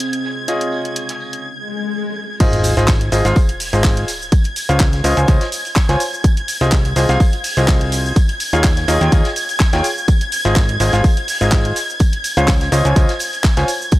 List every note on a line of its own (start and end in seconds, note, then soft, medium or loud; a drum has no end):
0.00 0.46 C4 medium
0.00 0.48 C4 medium
0.00 0.46 F4 medium
0.00 0.46 G#4 medium
0.00 1.44 G#4 medium
0.00 0.46 C5 medium
0.00 0.46 D#5 medium
0.00 1.44 F5 medium
0.00 2.39 G#6 medium
0.00 closed hi-hat medium
0.00 tambourine medium
0.13 closed hi-hat soft
0.24 snare soft
0.24 tambourine medium
0.48 1.44 F4 medium
0.48 1.44 G#4 medium
0.48 1.44 C#5 medium
0.48 1.44 D#5 medium
0.48 closed hi-hat medium
0.48 tambourine medium
0.60 closed hi-hat soft
0.60 closed hi-hat medium
0.72 tambourine medium
0.85 closed hi-hat soft
0.96 closed hi-hat medium
0.96 tambourine medium
1.09 snare soft
1.09 closed hi-hat medium
1.20 tambourine medium
1.33 closed hi-hat soft
1.44 swell medium
2.40 2.75 G#1 loud
2.40 2.72 F4 loud
2.40 2.72 G#4 medium
2.40 2.72 C5 medium
2.40 2.72 D#5 loud
2.40 13.99 G#6 medium
2.40 kick loud
2.40 closed hi-hat medium
2.40 tambourine medium
2.40 crash loud
2.40 sub drop medium
2.40 shaker soft
2.53 closed hi-hat soft
2.53 closed hi-hat medium
2.64 open hi-hat loud
2.64 tambourine medium
2.64 shaker medium
2.77 3.10 G#1 medium
2.77 2.88 F4 medium
2.77 2.88 G#4 medium
2.77 2.88 C5 medium
2.77 2.88 D#5 loud
2.77 snare soft
2.77 closed hi-hat soft
2.77 shaker soft
2.88 kick loud
2.88 snare loud
2.88 clap loud
2.88 closed hi-hat medium
2.88 tambourine medium
2.88 shaker soft
3.01 closed hi-hat soft
3.01 closed hi-hat medium
3.12 3.23 G#1 medium
3.12 3.23 F4 medium
3.12 3.23 G#4 medium
3.12 3.23 C5 medium
3.12 3.23 D#5 loud
3.12 snare soft
3.12 open hi-hat loud
3.12 tambourine medium
3.12 shaker medium
3.25 3.34 G#1 loud
3.25 3.36 F4 loud
3.25 3.36 G#4 medium
3.25 3.36 C5 medium
3.25 3.36 F5 loud
3.25 snare soft
3.25 closed hi-hat soft
3.25 shaker soft
3.36 kick loud
3.36 open hi-hat medium
3.36 tambourine medium
3.36 shaker soft
3.49 closed hi-hat medium
3.49 closed hi-hat soft
3.60 open hi-hat medium
3.60 open hi-hat loud
3.60 shaker medium
3.73 4.05 G#1 loud
3.73 4.07 F4 medium
3.73 4.07 G#4 medium
3.73 4.07 C5 medium
3.73 4.07 D#5 medium
3.73 closed hi-hat soft
3.73 shaker soft
3.84 kick loud
3.84 snare loud
3.84 clap loud
3.84 closed hi-hat medium
3.84 tambourine medium
3.84 shaker soft
3.97 closed hi-hat medium
4.08 snare soft
4.08 open hi-hat loud
4.08 tambourine medium
4.08 shaker medium
4.22 shaker soft
4.32 kick loud
4.32 closed hi-hat medium
4.32 tambourine medium
4.32 shaker soft
4.44 closed hi-hat soft
4.44 closed hi-hat medium
4.56 open hi-hat loud
4.56 tambourine medium
4.56 shaker medium
4.69 5.02 C#2 loud
4.69 4.80 F4 medium
4.69 4.80 C5 medium
4.69 4.80 C#5 medium
4.69 4.80 F5 loud
4.69 closed hi-hat soft
4.69 shaker soft
4.79 kick loud
4.79 snare loud
4.79 clap loud
4.79 closed hi-hat medium
4.79 tambourine medium
4.79 shaker soft
4.93 snare soft
4.93 closed hi-hat medium
5.04 5.15 C#2 loud
5.04 5.15 F4 loud
5.04 5.15 C5 medium
5.04 5.15 C#5 medium
5.04 5.15 D#5 loud
5.04 open hi-hat loud
5.04 tambourine medium
5.04 shaker medium
5.17 5.26 C#2 medium
5.17 5.26 F4 medium
5.17 5.26 C5 medium
5.17 5.26 C#5 medium
5.17 5.26 G#5 medium
5.17 closed hi-hat soft
5.17 shaker soft
5.28 5.39 C#2 loud
5.28 5.41 F4 medium
5.28 5.41 C5 medium
5.28 5.41 C#5 medium
5.28 5.41 D#5 loud
5.28 kick loud
5.28 closed hi-hat medium
5.28 tambourine medium
5.28 shaker soft
5.41 snare medium
5.41 closed hi-hat medium
5.52 open hi-hat loud
5.52 tambourine medium
5.52 shaker medium
5.65 open hi-hat medium
5.65 shaker soft
5.76 kick loud
5.76 snare loud
5.76 clap loud
5.76 closed hi-hat medium
5.76 tambourine medium
5.76 shaker soft
5.89 5.97 C#2 loud
5.89 5.99 F4 medium
5.89 5.99 C5 medium
5.89 5.99 C#5 medium
5.89 5.99 G#5 loud
5.89 snare medium
5.89 closed hi-hat medium
6.00 open hi-hat loud
6.00 tambourine medium
6.00 shaker medium
6.14 shaker soft
6.24 kick loud
6.24 closed hi-hat medium
6.24 tambourine loud
6.24 shaker soft
6.37 closed hi-hat soft
6.37 closed hi-hat medium
6.48 open hi-hat loud
6.48 tambourine medium
6.48 shaker medium
6.61 6.94 C2 loud
6.61 6.72 F4 medium
6.61 6.72 G#4 medium
6.61 6.72 C5 medium
6.61 6.72 D#5 loud
6.61 snare soft
6.61 closed hi-hat soft
6.61 shaker soft
6.72 kick loud
6.72 snare loud
6.72 clap loud
6.72 closed hi-hat medium
6.72 tambourine medium
6.72 shaker soft
6.85 closed hi-hat soft
6.96 7.07 C2 medium
6.96 7.07 F4 medium
6.96 7.07 G#4 medium
6.96 7.07 C5 medium
6.96 7.07 D#5 loud
6.96 snare soft
6.96 open hi-hat loud
6.96 tambourine medium
6.96 shaker medium
7.09 7.18 C2 loud
7.09 7.20 F4 loud
7.09 7.20 G#4 medium
7.09 7.20 C5 medium
7.09 7.20 F5 loud
7.09 snare medium
7.09 closed hi-hat soft
7.09 shaker soft
7.20 kick loud
7.20 open hi-hat medium
7.20 tambourine medium
7.20 shaker soft
7.33 closed hi-hat soft
7.44 open hi-hat medium
7.44 open hi-hat loud
7.44 shaker medium
7.57 8.13 C2 loud
7.57 8.15 F4 medium
7.57 8.15 G#4 medium
7.57 8.15 C5 medium
7.57 8.15 D#5 medium
7.57 closed hi-hat soft
7.57 shaker soft
7.68 kick loud
7.68 snare loud
7.68 clap loud
7.68 closed hi-hat medium
7.68 tambourine medium
7.68 shaker soft
7.81 closed hi-hat medium
7.92 snare soft
7.92 open hi-hat loud
7.92 tambourine medium
7.92 shaker medium
8.06 shaker soft
8.16 kick loud
8.16 closed hi-hat medium
8.16 tambourine medium
8.16 shaker soft
8.29 closed hi-hat soft
8.40 open hi-hat loud
8.40 tambourine medium
8.40 shaker medium
8.53 8.86 D#2 loud
8.53 8.64 F4 loud
8.53 8.64 G#4 medium
8.53 8.64 C#5 medium
8.53 8.64 F5 loud
8.53 closed hi-hat soft
8.53 shaker soft
8.64 kick loud
8.64 snare loud
8.64 clap loud
8.64 closed hi-hat medium
8.64 tambourine loud
8.64 shaker soft
8.77 snare medium
8.77 closed hi-hat medium
8.88 8.99 D#2 medium
8.88 8.99 F4 loud
8.88 8.99 G#4 medium
8.88 8.99 C#5 medium
8.88 8.99 D#5 loud
8.88 open hi-hat loud
8.88 tambourine medium
8.88 shaker medium
9.01 9.10 D#2 loud
9.01 9.11 F4 medium
9.01 9.11 G#4 medium
9.01 9.11 C#5 medium
9.01 9.11 G5 medium
9.01 closed hi-hat soft
9.01 shaker soft
9.12 9.25 F4 loud
9.12 9.25 G#4 medium
9.12 9.25 C#5 medium
9.12 9.25 D#5 loud
9.12 kick loud
9.12 closed hi-hat medium
9.12 tambourine medium
9.12 shaker soft
9.25 snare medium
9.25 closed hi-hat soft
9.36 open hi-hat loud
9.36 tambourine medium
9.36 shaker medium
9.49 open hi-hat medium
9.49 shaker soft
9.60 kick loud
9.60 snare loud
9.60 clap loud
9.60 closed hi-hat medium
9.60 tambourine loud
9.60 shaker soft
9.73 9.82 D#2 loud
9.73 9.84 F4 medium
9.73 9.84 G#4 medium
9.73 9.84 C#5 medium
9.73 9.84 G5 loud
9.73 snare medium
9.73 closed hi-hat medium
9.84 open hi-hat loud
9.84 tambourine medium
9.84 shaker medium
9.98 shaker soft
10.08 kick loud
10.08 closed hi-hat medium
10.08 tambourine medium
10.08 shaker soft
10.21 closed hi-hat soft
10.32 open hi-hat loud
10.32 tambourine medium
10.32 shaker medium
10.45 10.78 G#1 medium
10.45 10.56 F4 loud
10.45 10.56 G#4 medium
10.45 10.56 C5 medium
10.45 10.56 D#5 loud
10.45 snare soft
10.45 closed hi-hat soft
10.45 shaker soft
10.56 kick loud
10.56 snare loud
10.56 clap loud
10.56 closed hi-hat medium
10.56 tambourine medium
10.56 shaker soft
10.69 closed hi-hat soft
10.79 10.91 G#1 medium
10.79 10.91 F4 medium
10.79 10.91 G#4 medium
10.79 10.91 C5 medium
10.79 10.91 D#5 loud
10.79 snare soft
10.79 open hi-hat loud
10.79 tambourine medium
10.79 shaker medium
10.93 11.02 G#1 loud
10.93 11.04 F4 medium
10.93 11.04 G#4 medium
10.93 11.04 C5 medium
10.93 11.04 F5 loud
10.93 snare soft
10.93 closed hi-hat soft
10.93 shaker soft
11.04 kick loud
11.04 open hi-hat medium
11.04 tambourine medium
11.04 shaker soft
11.17 closed hi-hat soft
11.28 open hi-hat loud
11.28 open hi-hat medium
11.28 shaker medium
11.41 11.73 G#1 loud
11.41 11.75 F4 medium
11.41 11.75 G#4 medium
11.41 11.75 C5 medium
11.41 11.75 D#5 medium
11.41 closed hi-hat soft
11.41 shaker soft
11.52 kick loud
11.52 snare loud
11.52 clap loud
11.52 closed hi-hat medium
11.52 tambourine medium
11.52 shaker soft
11.65 closed hi-hat medium
11.75 snare soft
11.75 open hi-hat loud
11.75 tambourine medium
11.75 shaker medium
11.90 shaker soft
11.99 kick loud
11.99 closed hi-hat medium
11.99 tambourine medium
11.99 shaker soft
12.13 closed hi-hat soft
12.13 closed hi-hat medium
12.24 open hi-hat loud
12.24 tambourine medium
12.24 shaker medium
12.37 12.70 C#2 loud
12.37 12.48 F4 medium
12.37 12.48 C5 medium
12.37 12.48 C#5 medium
12.37 12.48 F5 loud
12.37 closed hi-hat soft
12.37 shaker soft
12.48 kick loud
12.48 snare loud
12.48 clap loud
12.48 closed hi-hat medium
12.48 tambourine medium
12.48 shaker soft
12.61 snare soft
12.61 closed hi-hat medium
12.72 12.82 C#2 medium
12.72 12.83 F4 loud
12.72 12.83 C5 medium
12.72 12.83 C#5 loud
12.72 12.83 D#5 loud
12.72 open hi-hat medium
12.72 tambourine medium
12.72 shaker medium
12.85 12.94 C#2 loud
12.85 12.94 F4 medium
12.85 12.94 C5 medium
12.85 12.94 C#5 medium
12.85 12.94 G#5 medium
12.85 closed hi-hat soft
12.85 shaker soft
12.96 13.07 C#2 loud
12.96 13.09 F4 loud
12.96 13.09 C5 medium
12.96 13.09 C#5 medium
12.96 13.09 D#5 loud
12.96 kick loud
12.96 closed hi-hat medium
12.96 tambourine medium
12.96 shaker soft
13.09 snare medium
13.09 closed hi-hat soft
13.19 open hi-hat loud
13.19 tambourine medium
13.19 shaker medium
13.33 open hi-hat medium
13.33 shaker soft
13.44 kick loud
13.44 snare loud
13.44 clap loud
13.44 closed hi-hat medium
13.44 tambourine medium
13.44 shaker soft
13.57 13.65 C#2 loud
13.57 13.67 F4 loud
13.57 13.67 C5 medium
13.57 13.67 C#5 medium
13.57 13.67 G#5 loud
13.57 snare medium
13.57 closed hi-hat medium
13.68 open hi-hat loud
13.68 tambourine medium
13.68 shaker medium
13.82 shaker soft
13.92 kick loud
13.92 closed hi-hat medium
13.92 tambourine medium
13.92 shaker soft